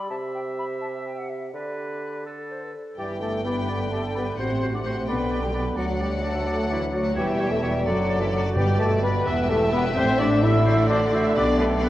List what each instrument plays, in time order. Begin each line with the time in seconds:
0.10 bassoon C3, clarinet G4, oboe E5, flute A5
0.34 flute G5
0.59 flute B5
0.81 flute A5
1.05 flute G5
1.18 flute F#5
1.29 flute E5
1.53 bassoon D3, clarinet G4, oboe B4, flute D5
2.26 clarinet A4, oboe A4
2.51 clarinet C5
2.64 clarinet B4
2.75 clarinet A4
2.97 double bass section G1, cello section G2, bassoon E3, french horn section G3, violin section D4 D5 G5, viola section G4, clarinet G4, oboe D5, flute G5
3.21 french horn section A3, clarinet G4, viola section A4, oboe D5, flute A5
3.44 french horn section B3, clarinet G4, viola section B4, oboe D5, flute B5
3.68 bassoon D3, clarinet G4, oboe D5
3.91 french horn section A3, clarinet G4, viola section A4, oboe D5, flute A5
4.15 french horn section B3, clarinet G4, viola section B4, oboe D5, flute B5
4.38 double bass section A1, cello section A2, bassoon C3, french horn section C4, violin section F#4 C5 F#5, clarinet F#4, viola section C5, oboe C5, flute C6
4.62 clarinet F#4, oboe C5
4.74 french horn section D4, viola section D5, flute D6
4.85 french horn section C4, clarinet F#4, viola section C5, oboe C5, flute C6
5.08 double bass section B1, cello section B2, bassoon D3, french horn section B3, violin section D4 D5 G5, clarinet G4, viola section B4, oboe D5, flute B5
5.31 clarinet G4, oboe D5
5.43 french horn section G3, viola section G4, flute G5
5.53 french horn section B3, clarinet G4, viola section B4, oboe D5, flute B5
5.76 double bass section D2, cello section D2, french horn section F#3, bassoon F#3, viola section F#4, clarinet F#4, oboe D5, flute F#5, violin section F#5
6.00 french horn section G3, clarinet F#4, viola section G4, oboe D5, flute G5
6.22 french horn section A3, clarinet F#4, viola section A4, oboe D5, flute A5
6.47 clarinet F#4, oboe D5
6.70 french horn section E3, viola section E4, clarinet F#4, oboe D5, flute E5
6.93 french horn section F#3, viola section F#4, clarinet F#4, oboe D5, flute F#5
7.16 double bass section E1, cello section E2, bassoon E3, french horn section G3, violin section G4 C#5 E5, viola section G4, clarinet G4, oboe C#5, flute G5
7.40 clarinet G4, oboe C#5
7.51 french horn section A3, viola section A4, flute A5
7.63 french horn section G3, clarinet G4, viola section G4, oboe C#5, flute G5
7.86 double bass section F#1, cello section F#2, bassoon D3, french horn section F#3, viola section F#4, violin section A4 D5, clarinet A4, oboe D5, flute F#5
8.09 clarinet A4, oboe D5
8.20 french horn section E3, viola section E4, flute E5
8.33 french horn section F#3, viola section F#4, clarinet A4, oboe D5, flute F#5
8.55 double bass section G1, timpani G2, cello section G2, bassoon B2, french horn section G3, violin section G4 B4, viola section G4, clarinet B4, oboe D5, flute G5
8.79 french horn section A3, viola section A4, clarinet B4, oboe D5, flute A5
9.03 french horn section B3, viola section B4, clarinet B4, oboe D5, flute B5
9.26 double bass section E1, cello section E2, bassoon E3, clarinet G4, oboe E5, violin section E5
9.49 french horn section A3, clarinet G4, viola section A4, oboe E5, flute A5
9.72 french horn section B3, clarinet G4, viola section B4, oboe E5, flute B5
9.95 double bass section A1, cello section A2, bassoon D3, french horn section C4, clarinet G4, violin section A4, viola section C5, oboe E5, flute C6
10.19 french horn section D4, clarinet G4, viola section D5, oboe E5, flute D6
10.42 french horn section E4, clarinet G4, viola section E5, oboe E5, flute E6
10.65 violin section F#4 C5 D5, clarinet F#4, oboe C5
10.89 french horn section D4, clarinet F#4, oboe C5, viola section D5, flute D6
11.12 french horn section E4, clarinet F#4, oboe C5, viola section E5, flute E6
11.35 double bass section B1, cello section B2, french horn section D4, violin section G4 B4 D5, clarinet G4, oboe B4, viola section D5, flute D6
11.59 french horn section A3, clarinet G4, viola section A4, oboe B4, flute A5
11.83 french horn section B3, clarinet G4, viola section B4, oboe B4, flute B5